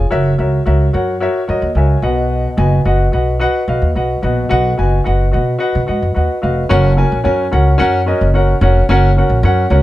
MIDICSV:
0, 0, Header, 1, 3, 480
1, 0, Start_track
1, 0, Tempo, 547945
1, 103, Time_signature, 4, 2, 24, 8
1, 8608, End_track
2, 0, Start_track
2, 0, Title_t, "Upright piano"
2, 0, Program_c, 0, 0
2, 92, Note_on_c, 0, 66, 96
2, 95, Note_on_c, 0, 70, 89
2, 95, Note_on_c, 0, 73, 95
2, 102, Note_on_c, 0, 76, 111
2, 280, Note_off_c, 0, 66, 0
2, 281, Note_off_c, 0, 70, 0
2, 281, Note_off_c, 0, 73, 0
2, 285, Note_off_c, 0, 76, 0
2, 335, Note_on_c, 0, 66, 73
2, 337, Note_on_c, 0, 70, 74
2, 343, Note_on_c, 0, 73, 69
2, 348, Note_on_c, 0, 76, 83
2, 521, Note_off_c, 0, 66, 0
2, 522, Note_off_c, 0, 70, 0
2, 525, Note_off_c, 0, 73, 0
2, 528, Note_off_c, 0, 76, 0
2, 575, Note_on_c, 0, 66, 81
2, 576, Note_on_c, 0, 70, 77
2, 580, Note_on_c, 0, 73, 73
2, 587, Note_on_c, 0, 76, 91
2, 761, Note_off_c, 0, 66, 0
2, 762, Note_off_c, 0, 70, 0
2, 763, Note_off_c, 0, 73, 0
2, 767, Note_off_c, 0, 76, 0
2, 817, Note_on_c, 0, 66, 80
2, 820, Note_on_c, 0, 70, 74
2, 825, Note_on_c, 0, 73, 70
2, 827, Note_on_c, 0, 78, 85
2, 1002, Note_off_c, 0, 66, 0
2, 1004, Note_off_c, 0, 70, 0
2, 1006, Note_off_c, 0, 73, 0
2, 1007, Note_off_c, 0, 78, 0
2, 1055, Note_on_c, 0, 66, 94
2, 1059, Note_on_c, 0, 70, 86
2, 1062, Note_on_c, 0, 73, 93
2, 1073, Note_on_c, 0, 76, 102
2, 1241, Note_off_c, 0, 66, 0
2, 1243, Note_off_c, 0, 70, 0
2, 1244, Note_off_c, 0, 73, 0
2, 1250, Note_off_c, 0, 76, 0
2, 1294, Note_on_c, 0, 66, 82
2, 1298, Note_on_c, 0, 70, 74
2, 1301, Note_on_c, 0, 73, 70
2, 1309, Note_on_c, 0, 75, 91
2, 1480, Note_off_c, 0, 66, 0
2, 1482, Note_off_c, 0, 70, 0
2, 1484, Note_off_c, 0, 73, 0
2, 1488, Note_off_c, 0, 75, 0
2, 1545, Note_on_c, 0, 70, 70
2, 1547, Note_on_c, 0, 66, 71
2, 1548, Note_on_c, 0, 80, 67
2, 1550, Note_on_c, 0, 73, 68
2, 1554, Note_on_c, 0, 76, 81
2, 1726, Note_off_c, 0, 70, 0
2, 1727, Note_off_c, 0, 66, 0
2, 1728, Note_off_c, 0, 73, 0
2, 1731, Note_off_c, 0, 76, 0
2, 1768, Note_off_c, 0, 80, 0
2, 1773, Note_on_c, 0, 66, 77
2, 1776, Note_on_c, 0, 71, 75
2, 1780, Note_on_c, 0, 47, 71
2, 1780, Note_on_c, 0, 75, 77
2, 1782, Note_on_c, 0, 78, 91
2, 2162, Note_off_c, 0, 66, 0
2, 2163, Note_off_c, 0, 71, 0
2, 2165, Note_off_c, 0, 75, 0
2, 2166, Note_off_c, 0, 78, 0
2, 2254, Note_on_c, 0, 66, 79
2, 2257, Note_on_c, 0, 71, 73
2, 2263, Note_on_c, 0, 75, 73
2, 2265, Note_on_c, 0, 80, 85
2, 2440, Note_off_c, 0, 66, 0
2, 2442, Note_off_c, 0, 71, 0
2, 2445, Note_off_c, 0, 75, 0
2, 2446, Note_off_c, 0, 80, 0
2, 2466, Note_off_c, 0, 47, 0
2, 2501, Note_on_c, 0, 66, 84
2, 2501, Note_on_c, 0, 71, 77
2, 2503, Note_on_c, 0, 75, 79
2, 2507, Note_on_c, 0, 78, 87
2, 2684, Note_off_c, 0, 66, 0
2, 2684, Note_off_c, 0, 71, 0
2, 2685, Note_off_c, 0, 75, 0
2, 2687, Note_off_c, 0, 78, 0
2, 2734, Note_on_c, 0, 66, 77
2, 2739, Note_on_c, 0, 71, 74
2, 2744, Note_on_c, 0, 75, 71
2, 2746, Note_on_c, 0, 78, 85
2, 2921, Note_off_c, 0, 66, 0
2, 2923, Note_off_c, 0, 71, 0
2, 2926, Note_off_c, 0, 75, 0
2, 2926, Note_off_c, 0, 78, 0
2, 2975, Note_on_c, 0, 66, 98
2, 2981, Note_on_c, 0, 75, 87
2, 2982, Note_on_c, 0, 71, 93
2, 2989, Note_on_c, 0, 78, 108
2, 3161, Note_off_c, 0, 66, 0
2, 3164, Note_off_c, 0, 75, 0
2, 3165, Note_off_c, 0, 71, 0
2, 3168, Note_off_c, 0, 78, 0
2, 3222, Note_on_c, 0, 66, 75
2, 3225, Note_on_c, 0, 71, 71
2, 3231, Note_on_c, 0, 75, 69
2, 3232, Note_on_c, 0, 77, 89
2, 3405, Note_off_c, 0, 66, 0
2, 3407, Note_off_c, 0, 71, 0
2, 3409, Note_off_c, 0, 75, 0
2, 3410, Note_off_c, 0, 77, 0
2, 3463, Note_on_c, 0, 66, 74
2, 3469, Note_on_c, 0, 71, 70
2, 3471, Note_on_c, 0, 75, 72
2, 3474, Note_on_c, 0, 78, 83
2, 3646, Note_off_c, 0, 66, 0
2, 3648, Note_off_c, 0, 71, 0
2, 3650, Note_off_c, 0, 75, 0
2, 3651, Note_off_c, 0, 78, 0
2, 3701, Note_on_c, 0, 66, 82
2, 3705, Note_on_c, 0, 71, 72
2, 3706, Note_on_c, 0, 47, 69
2, 3707, Note_on_c, 0, 75, 69
2, 3712, Note_on_c, 0, 78, 80
2, 3884, Note_off_c, 0, 66, 0
2, 3887, Note_off_c, 0, 71, 0
2, 3888, Note_off_c, 0, 75, 0
2, 3890, Note_off_c, 0, 78, 0
2, 3937, Note_on_c, 0, 66, 97
2, 3940, Note_on_c, 0, 71, 95
2, 3946, Note_on_c, 0, 75, 90
2, 3947, Note_on_c, 0, 78, 111
2, 4122, Note_off_c, 0, 66, 0
2, 4124, Note_off_c, 0, 71, 0
2, 4127, Note_off_c, 0, 75, 0
2, 4128, Note_off_c, 0, 78, 0
2, 4184, Note_on_c, 0, 66, 79
2, 4184, Note_on_c, 0, 71, 66
2, 4189, Note_on_c, 0, 75, 71
2, 4194, Note_on_c, 0, 80, 88
2, 4366, Note_off_c, 0, 66, 0
2, 4367, Note_off_c, 0, 71, 0
2, 4369, Note_off_c, 0, 75, 0
2, 4371, Note_off_c, 0, 80, 0
2, 4390, Note_off_c, 0, 47, 0
2, 4417, Note_on_c, 0, 66, 81
2, 4424, Note_on_c, 0, 71, 72
2, 4426, Note_on_c, 0, 75, 74
2, 4429, Note_on_c, 0, 78, 91
2, 4603, Note_off_c, 0, 66, 0
2, 4607, Note_off_c, 0, 71, 0
2, 4608, Note_off_c, 0, 75, 0
2, 4609, Note_off_c, 0, 78, 0
2, 4657, Note_on_c, 0, 66, 75
2, 4663, Note_on_c, 0, 71, 70
2, 4666, Note_on_c, 0, 75, 72
2, 4670, Note_on_c, 0, 78, 80
2, 4843, Note_off_c, 0, 66, 0
2, 4846, Note_off_c, 0, 71, 0
2, 4847, Note_off_c, 0, 75, 0
2, 4849, Note_off_c, 0, 78, 0
2, 4893, Note_on_c, 0, 66, 93
2, 4897, Note_on_c, 0, 71, 84
2, 4900, Note_on_c, 0, 75, 81
2, 4907, Note_on_c, 0, 78, 104
2, 5081, Note_off_c, 0, 66, 0
2, 5083, Note_off_c, 0, 71, 0
2, 5084, Note_off_c, 0, 75, 0
2, 5088, Note_off_c, 0, 78, 0
2, 5140, Note_on_c, 0, 66, 71
2, 5144, Note_on_c, 0, 71, 67
2, 5148, Note_on_c, 0, 75, 72
2, 5149, Note_on_c, 0, 78, 83
2, 5325, Note_off_c, 0, 66, 0
2, 5327, Note_off_c, 0, 71, 0
2, 5329, Note_off_c, 0, 75, 0
2, 5329, Note_off_c, 0, 78, 0
2, 5383, Note_on_c, 0, 66, 76
2, 5385, Note_on_c, 0, 71, 64
2, 5392, Note_on_c, 0, 78, 76
2, 5396, Note_on_c, 0, 75, 68
2, 5566, Note_off_c, 0, 66, 0
2, 5567, Note_off_c, 0, 71, 0
2, 5570, Note_off_c, 0, 78, 0
2, 5573, Note_off_c, 0, 75, 0
2, 5622, Note_on_c, 0, 66, 79
2, 5626, Note_on_c, 0, 71, 69
2, 5629, Note_on_c, 0, 75, 68
2, 5633, Note_on_c, 0, 77, 83
2, 5806, Note_off_c, 0, 66, 0
2, 5808, Note_off_c, 0, 71, 0
2, 5809, Note_off_c, 0, 75, 0
2, 5811, Note_off_c, 0, 77, 0
2, 5863, Note_on_c, 0, 61, 113
2, 5865, Note_on_c, 0, 66, 98
2, 5866, Note_on_c, 0, 70, 99
2, 5868, Note_on_c, 0, 73, 102
2, 5872, Note_on_c, 0, 78, 120
2, 6046, Note_off_c, 0, 61, 0
2, 6047, Note_off_c, 0, 66, 0
2, 6048, Note_off_c, 0, 70, 0
2, 6049, Note_off_c, 0, 73, 0
2, 6051, Note_off_c, 0, 78, 0
2, 6102, Note_on_c, 0, 61, 85
2, 6104, Note_on_c, 0, 66, 74
2, 6106, Note_on_c, 0, 70, 77
2, 6109, Note_on_c, 0, 73, 80
2, 6114, Note_on_c, 0, 80, 94
2, 6286, Note_off_c, 0, 61, 0
2, 6287, Note_off_c, 0, 66, 0
2, 6288, Note_off_c, 0, 70, 0
2, 6289, Note_off_c, 0, 73, 0
2, 6292, Note_off_c, 0, 80, 0
2, 6340, Note_on_c, 0, 61, 91
2, 6344, Note_on_c, 0, 66, 80
2, 6347, Note_on_c, 0, 70, 83
2, 6347, Note_on_c, 0, 73, 83
2, 6348, Note_on_c, 0, 80, 96
2, 6525, Note_off_c, 0, 61, 0
2, 6527, Note_off_c, 0, 66, 0
2, 6528, Note_off_c, 0, 70, 0
2, 6528, Note_off_c, 0, 73, 0
2, 6529, Note_off_c, 0, 80, 0
2, 6582, Note_on_c, 0, 61, 80
2, 6584, Note_on_c, 0, 66, 78
2, 6591, Note_on_c, 0, 70, 79
2, 6592, Note_on_c, 0, 73, 75
2, 6595, Note_on_c, 0, 78, 93
2, 6766, Note_off_c, 0, 61, 0
2, 6767, Note_off_c, 0, 66, 0
2, 6770, Note_off_c, 0, 70, 0
2, 6770, Note_off_c, 0, 73, 0
2, 6772, Note_off_c, 0, 78, 0
2, 6814, Note_on_c, 0, 61, 111
2, 6817, Note_on_c, 0, 66, 97
2, 6821, Note_on_c, 0, 70, 98
2, 6824, Note_on_c, 0, 73, 93
2, 6827, Note_on_c, 0, 78, 123
2, 7002, Note_off_c, 0, 61, 0
2, 7003, Note_off_c, 0, 66, 0
2, 7005, Note_off_c, 0, 70, 0
2, 7007, Note_off_c, 0, 73, 0
2, 7008, Note_off_c, 0, 78, 0
2, 7063, Note_on_c, 0, 61, 86
2, 7066, Note_on_c, 0, 66, 77
2, 7069, Note_on_c, 0, 70, 81
2, 7070, Note_on_c, 0, 73, 76
2, 7076, Note_on_c, 0, 75, 94
2, 7246, Note_off_c, 0, 61, 0
2, 7248, Note_off_c, 0, 66, 0
2, 7249, Note_off_c, 0, 70, 0
2, 7249, Note_off_c, 0, 73, 0
2, 7253, Note_off_c, 0, 75, 0
2, 7303, Note_on_c, 0, 61, 83
2, 7307, Note_on_c, 0, 66, 76
2, 7312, Note_on_c, 0, 70, 82
2, 7314, Note_on_c, 0, 78, 93
2, 7315, Note_on_c, 0, 73, 73
2, 7486, Note_off_c, 0, 61, 0
2, 7488, Note_off_c, 0, 66, 0
2, 7491, Note_off_c, 0, 70, 0
2, 7492, Note_off_c, 0, 73, 0
2, 7492, Note_off_c, 0, 78, 0
2, 7546, Note_on_c, 0, 61, 90
2, 7547, Note_on_c, 0, 66, 76
2, 7551, Note_on_c, 0, 70, 83
2, 7553, Note_on_c, 0, 73, 80
2, 7556, Note_on_c, 0, 78, 95
2, 7728, Note_off_c, 0, 61, 0
2, 7728, Note_off_c, 0, 66, 0
2, 7730, Note_off_c, 0, 70, 0
2, 7731, Note_off_c, 0, 73, 0
2, 7733, Note_off_c, 0, 78, 0
2, 7788, Note_on_c, 0, 61, 113
2, 7795, Note_on_c, 0, 66, 106
2, 7795, Note_on_c, 0, 70, 101
2, 7799, Note_on_c, 0, 73, 101
2, 7805, Note_on_c, 0, 78, 116
2, 7969, Note_off_c, 0, 61, 0
2, 7972, Note_off_c, 0, 66, 0
2, 7972, Note_off_c, 0, 70, 0
2, 7974, Note_off_c, 0, 73, 0
2, 7977, Note_off_c, 0, 78, 0
2, 8033, Note_on_c, 0, 61, 80
2, 8040, Note_on_c, 0, 70, 78
2, 8042, Note_on_c, 0, 66, 80
2, 8044, Note_on_c, 0, 73, 75
2, 8044, Note_on_c, 0, 78, 89
2, 8211, Note_off_c, 0, 61, 0
2, 8215, Note_off_c, 0, 70, 0
2, 8216, Note_off_c, 0, 66, 0
2, 8217, Note_off_c, 0, 73, 0
2, 8217, Note_off_c, 0, 78, 0
2, 8263, Note_on_c, 0, 61, 91
2, 8269, Note_on_c, 0, 66, 81
2, 8272, Note_on_c, 0, 70, 78
2, 8273, Note_on_c, 0, 73, 83
2, 8278, Note_on_c, 0, 78, 103
2, 8447, Note_off_c, 0, 61, 0
2, 8449, Note_off_c, 0, 66, 0
2, 8451, Note_off_c, 0, 70, 0
2, 8451, Note_off_c, 0, 73, 0
2, 8454, Note_off_c, 0, 78, 0
2, 8501, Note_on_c, 0, 61, 87
2, 8505, Note_on_c, 0, 66, 80
2, 8506, Note_on_c, 0, 70, 81
2, 8506, Note_on_c, 0, 73, 84
2, 8509, Note_on_c, 0, 78, 93
2, 8608, Note_off_c, 0, 61, 0
2, 8608, Note_off_c, 0, 66, 0
2, 8608, Note_off_c, 0, 70, 0
2, 8608, Note_off_c, 0, 73, 0
2, 8608, Note_off_c, 0, 78, 0
2, 8608, End_track
3, 0, Start_track
3, 0, Title_t, "Upright bass"
3, 0, Program_c, 1, 32
3, 104, Note_on_c, 1, 30, 95
3, 290, Note_off_c, 1, 30, 0
3, 338, Note_on_c, 1, 37, 82
3, 526, Note_off_c, 1, 37, 0
3, 581, Note_on_c, 1, 37, 90
3, 768, Note_off_c, 1, 37, 0
3, 822, Note_on_c, 1, 42, 92
3, 1102, Note_off_c, 1, 42, 0
3, 1302, Note_on_c, 1, 42, 87
3, 1395, Note_off_c, 1, 42, 0
3, 1417, Note_on_c, 1, 39, 83
3, 1512, Note_off_c, 1, 39, 0
3, 1532, Note_on_c, 1, 37, 82
3, 1722, Note_off_c, 1, 37, 0
3, 1772, Note_on_c, 1, 35, 90
3, 2149, Note_off_c, 1, 35, 0
3, 2256, Note_on_c, 1, 30, 102
3, 2445, Note_off_c, 1, 30, 0
3, 2501, Note_on_c, 1, 30, 91
3, 2688, Note_off_c, 1, 30, 0
3, 2742, Note_on_c, 1, 35, 80
3, 3022, Note_off_c, 1, 35, 0
3, 3221, Note_on_c, 1, 35, 84
3, 3315, Note_off_c, 1, 35, 0
3, 3345, Note_on_c, 1, 39, 81
3, 3437, Note_off_c, 1, 39, 0
3, 3467, Note_on_c, 1, 35, 75
3, 3652, Note_off_c, 1, 35, 0
3, 3704, Note_on_c, 1, 34, 85
3, 3890, Note_off_c, 1, 34, 0
3, 3948, Note_on_c, 1, 35, 99
3, 4133, Note_off_c, 1, 35, 0
3, 4194, Note_on_c, 1, 30, 77
3, 4376, Note_off_c, 1, 30, 0
3, 4437, Note_on_c, 1, 30, 89
3, 4676, Note_on_c, 1, 47, 86
3, 4689, Note_off_c, 1, 30, 0
3, 4858, Note_off_c, 1, 47, 0
3, 5038, Note_on_c, 1, 47, 89
3, 5126, Note_off_c, 1, 47, 0
3, 5159, Note_on_c, 1, 44, 70
3, 5246, Note_off_c, 1, 44, 0
3, 5277, Note_on_c, 1, 42, 83
3, 5366, Note_off_c, 1, 42, 0
3, 5398, Note_on_c, 1, 39, 74
3, 5486, Note_off_c, 1, 39, 0
3, 5635, Note_on_c, 1, 29, 79
3, 5817, Note_off_c, 1, 29, 0
3, 5876, Note_on_c, 1, 30, 114
3, 6151, Note_off_c, 1, 30, 0
3, 6236, Note_on_c, 1, 34, 89
3, 6325, Note_off_c, 1, 34, 0
3, 6349, Note_on_c, 1, 42, 97
3, 6534, Note_off_c, 1, 42, 0
3, 6592, Note_on_c, 1, 37, 94
3, 6775, Note_off_c, 1, 37, 0
3, 6830, Note_on_c, 1, 42, 97
3, 7107, Note_off_c, 1, 42, 0
3, 7193, Note_on_c, 1, 30, 89
3, 7469, Note_off_c, 1, 30, 0
3, 7543, Note_on_c, 1, 29, 98
3, 7730, Note_off_c, 1, 29, 0
3, 7787, Note_on_c, 1, 30, 108
3, 8066, Note_off_c, 1, 30, 0
3, 8143, Note_on_c, 1, 34, 91
3, 8237, Note_off_c, 1, 34, 0
3, 8262, Note_on_c, 1, 42, 112
3, 8450, Note_off_c, 1, 42, 0
3, 8499, Note_on_c, 1, 37, 95
3, 8608, Note_off_c, 1, 37, 0
3, 8608, End_track
0, 0, End_of_file